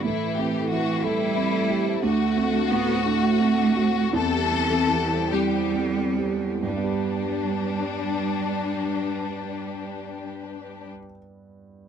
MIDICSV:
0, 0, Header, 1, 6, 480
1, 0, Start_track
1, 0, Key_signature, 1, "major"
1, 0, Tempo, 661521
1, 28, Time_signature, 6, 3, 24, 8
1, 1468, Tempo, 686499
1, 2428, Tempo, 731707
1, 2908, Tempo, 782269
1, 3388, Tempo, 828729
1, 3868, Tempo, 884956
1, 7202, End_track
2, 0, Start_track
2, 0, Title_t, "Vibraphone"
2, 0, Program_c, 0, 11
2, 35, Note_on_c, 0, 69, 77
2, 105, Note_off_c, 0, 69, 0
2, 156, Note_on_c, 0, 76, 67
2, 227, Note_off_c, 0, 76, 0
2, 276, Note_on_c, 0, 76, 66
2, 346, Note_off_c, 0, 76, 0
2, 394, Note_on_c, 0, 69, 82
2, 465, Note_off_c, 0, 69, 0
2, 510, Note_on_c, 0, 76, 64
2, 582, Note_off_c, 0, 76, 0
2, 629, Note_on_c, 0, 79, 60
2, 701, Note_off_c, 0, 79, 0
2, 747, Note_on_c, 0, 69, 86
2, 819, Note_off_c, 0, 69, 0
2, 865, Note_on_c, 0, 79, 55
2, 938, Note_off_c, 0, 79, 0
2, 1101, Note_on_c, 0, 69, 83
2, 1175, Note_off_c, 0, 69, 0
2, 1227, Note_on_c, 0, 79, 59
2, 1299, Note_off_c, 0, 79, 0
2, 1350, Note_on_c, 0, 72, 65
2, 1422, Note_off_c, 0, 72, 0
2, 1469, Note_on_c, 0, 62, 94
2, 1540, Note_off_c, 0, 62, 0
2, 1590, Note_on_c, 0, 69, 71
2, 1660, Note_off_c, 0, 69, 0
2, 1709, Note_on_c, 0, 69, 74
2, 1779, Note_off_c, 0, 69, 0
2, 1826, Note_on_c, 0, 62, 90
2, 1897, Note_off_c, 0, 62, 0
2, 1946, Note_on_c, 0, 69, 77
2, 2017, Note_off_c, 0, 69, 0
2, 2067, Note_on_c, 0, 72, 65
2, 2138, Note_off_c, 0, 72, 0
2, 2185, Note_on_c, 0, 62, 111
2, 2258, Note_off_c, 0, 62, 0
2, 2309, Note_on_c, 0, 72, 69
2, 2382, Note_off_c, 0, 72, 0
2, 2545, Note_on_c, 0, 62, 91
2, 2617, Note_off_c, 0, 62, 0
2, 2666, Note_on_c, 0, 72, 63
2, 2738, Note_off_c, 0, 72, 0
2, 2782, Note_on_c, 0, 66, 63
2, 2857, Note_off_c, 0, 66, 0
2, 2903, Note_on_c, 0, 60, 108
2, 2975, Note_off_c, 0, 60, 0
2, 3023, Note_on_c, 0, 67, 76
2, 3095, Note_off_c, 0, 67, 0
2, 3145, Note_on_c, 0, 67, 72
2, 3217, Note_off_c, 0, 67, 0
2, 3264, Note_on_c, 0, 60, 104
2, 3338, Note_off_c, 0, 60, 0
2, 3387, Note_on_c, 0, 67, 72
2, 3457, Note_off_c, 0, 67, 0
2, 3506, Note_on_c, 0, 72, 66
2, 3577, Note_off_c, 0, 72, 0
2, 3623, Note_on_c, 0, 60, 94
2, 3696, Note_off_c, 0, 60, 0
2, 3745, Note_on_c, 0, 72, 59
2, 3820, Note_off_c, 0, 72, 0
2, 3988, Note_on_c, 0, 60, 69
2, 4061, Note_off_c, 0, 60, 0
2, 4109, Note_on_c, 0, 72, 52
2, 4182, Note_off_c, 0, 72, 0
2, 4232, Note_on_c, 0, 64, 54
2, 4303, Note_off_c, 0, 64, 0
2, 7202, End_track
3, 0, Start_track
3, 0, Title_t, "String section"
3, 0, Program_c, 1, 48
3, 0, Note_on_c, 1, 71, 61
3, 19, Note_on_c, 1, 69, 62
3, 20, Note_on_c, 1, 57, 60
3, 1440, Note_off_c, 1, 71, 0
3, 1462, Note_on_c, 1, 66, 74
3, 2905, Note_off_c, 1, 57, 0
3, 2905, Note_on_c, 1, 55, 72
3, 2906, Note_off_c, 1, 66, 0
3, 2907, Note_on_c, 1, 67, 74
3, 4347, Note_off_c, 1, 55, 0
3, 4347, Note_off_c, 1, 67, 0
3, 4347, Note_off_c, 1, 69, 0
3, 4353, Note_on_c, 1, 55, 64
3, 4353, Note_on_c, 1, 67, 65
3, 4356, Note_on_c, 1, 71, 58
3, 6668, Note_off_c, 1, 55, 0
3, 6668, Note_off_c, 1, 67, 0
3, 6671, Note_off_c, 1, 71, 0
3, 7202, End_track
4, 0, Start_track
4, 0, Title_t, "Violin section"
4, 0, Program_c, 2, 48
4, 30, Note_on_c, 2, 64, 73
4, 266, Note_off_c, 2, 64, 0
4, 267, Note_on_c, 2, 67, 68
4, 509, Note_off_c, 2, 67, 0
4, 510, Note_on_c, 2, 66, 80
4, 744, Note_off_c, 2, 66, 0
4, 744, Note_on_c, 2, 64, 85
4, 1466, Note_off_c, 2, 64, 0
4, 1472, Note_on_c, 2, 66, 101
4, 2884, Note_off_c, 2, 66, 0
4, 2917, Note_on_c, 2, 69, 121
4, 3614, Note_off_c, 2, 69, 0
4, 3630, Note_on_c, 2, 67, 80
4, 3990, Note_off_c, 2, 67, 0
4, 4348, Note_on_c, 2, 62, 76
4, 6663, Note_off_c, 2, 62, 0
4, 7202, End_track
5, 0, Start_track
5, 0, Title_t, "Grand piano"
5, 0, Program_c, 3, 0
5, 0, Control_c, 3, 64, 127
5, 30, Note_on_c, 3, 45, 66
5, 43, Control_c, 3, 64, 0
5, 171, Control_c, 3, 64, 127
5, 277, Note_on_c, 3, 60, 60
5, 518, Note_on_c, 3, 52, 54
5, 657, Note_off_c, 3, 60, 0
5, 753, Note_on_c, 3, 57, 65
5, 897, Note_off_c, 3, 52, 0
5, 992, Note_on_c, 3, 60, 60
5, 1134, Note_off_c, 3, 57, 0
5, 1233, Note_on_c, 3, 67, 60
5, 1373, Note_off_c, 3, 60, 0
5, 1440, Note_off_c, 3, 45, 0
5, 1471, Note_off_c, 3, 67, 0
5, 1472, Note_on_c, 3, 38, 69
5, 1480, Control_c, 3, 64, 0
5, 1591, Control_c, 3, 64, 127
5, 1707, Note_on_c, 3, 60, 66
5, 1953, Note_on_c, 3, 45, 60
5, 2089, Note_off_c, 3, 60, 0
5, 2191, Note_on_c, 3, 57, 69
5, 2335, Note_off_c, 3, 45, 0
5, 2430, Note_on_c, 3, 60, 72
5, 2572, Note_off_c, 3, 57, 0
5, 2667, Note_on_c, 3, 66, 63
5, 2811, Note_off_c, 3, 60, 0
5, 2884, Note_off_c, 3, 38, 0
5, 2910, Note_off_c, 3, 66, 0
5, 2911, Note_on_c, 3, 40, 86
5, 2921, Control_c, 3, 64, 0
5, 3017, Control_c, 3, 64, 127
5, 3150, Note_on_c, 3, 60, 65
5, 3390, Note_on_c, 3, 52, 57
5, 3531, Note_off_c, 3, 60, 0
5, 3623, Note_on_c, 3, 55, 61
5, 3770, Note_off_c, 3, 52, 0
5, 3870, Note_on_c, 3, 60, 61
5, 4011, Note_off_c, 3, 55, 0
5, 4108, Note_on_c, 3, 67, 46
5, 4256, Note_off_c, 3, 60, 0
5, 4329, Note_off_c, 3, 40, 0
5, 4350, Note_off_c, 3, 67, 0
5, 4350, Note_on_c, 3, 43, 53
5, 4364, Control_c, 3, 64, 0
5, 4388, Note_on_c, 3, 55, 47
5, 4426, Note_on_c, 3, 59, 59
5, 4464, Note_on_c, 3, 67, 53
5, 4497, Control_c, 3, 64, 127
5, 4502, Note_on_c, 3, 71, 54
5, 6665, Note_off_c, 3, 43, 0
5, 6703, Note_off_c, 3, 55, 0
5, 6741, Note_off_c, 3, 59, 0
5, 6779, Note_off_c, 3, 67, 0
5, 6817, Note_off_c, 3, 71, 0
5, 7202, End_track
6, 0, Start_track
6, 0, Title_t, "Cello"
6, 0, Program_c, 4, 42
6, 23, Note_on_c, 4, 52, 90
6, 750, Note_on_c, 4, 55, 121
6, 761, Note_off_c, 4, 52, 0
6, 1457, Note_off_c, 4, 55, 0
6, 1462, Note_on_c, 4, 57, 117
6, 1943, Note_on_c, 4, 59, 117
6, 1953, Note_off_c, 4, 57, 0
6, 2178, Note_on_c, 4, 57, 127
6, 2189, Note_off_c, 4, 59, 0
6, 2900, Note_off_c, 4, 57, 0
6, 2904, Note_on_c, 4, 52, 114
6, 3608, Note_off_c, 4, 52, 0
6, 3627, Note_on_c, 4, 55, 108
6, 4338, Note_off_c, 4, 55, 0
6, 4350, Note_on_c, 4, 55, 88
6, 6665, Note_off_c, 4, 55, 0
6, 7202, End_track
0, 0, End_of_file